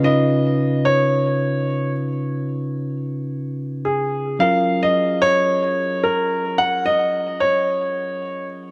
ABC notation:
X:1
M:4/4
L:1/16
Q:"Swing 16ths" 1/4=110
K:C#mix
V:1 name="Grand piano"
d6 c8 z2 | z12 G4 | e3 d3 c6 A4 | f2 d4 c8 z2 |]
V:2 name="Tine electric piano"
[C,CDEB]16- | [C,CDEB]16 | [F,CEGA]16- | [F,CEGA]16 |]